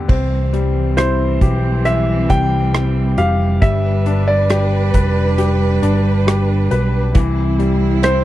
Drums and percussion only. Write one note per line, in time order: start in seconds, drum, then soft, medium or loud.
0.09 kick loud
0.09 crash medium
0.54 closed hi-hat soft
0.97 cross-stick loud
0.97 closed hi-hat medium
1.41 kick medium
1.41 closed hi-hat medium
1.85 closed hi-hat medium
2.30 kick medium
2.30 closed hi-hat medium
2.74 cross-stick loud
2.74 closed hi-hat medium
3.18 closed hi-hat medium
3.62 kick loud
3.62 closed hi-hat medium
4.06 closed hi-hat soft
4.50 cross-stick medium
4.50 closed hi-hat medium
4.94 kick medium
4.94 closed hi-hat medium
5.38 closed hi-hat medium
5.83 closed hi-hat medium
6.28 cross-stick loud
6.28 closed hi-hat medium
6.71 closed hi-hat medium
7.15 kick loud
7.15 closed hi-hat medium
7.60 closed hi-hat medium
8.03 cross-stick medium
8.03 closed hi-hat medium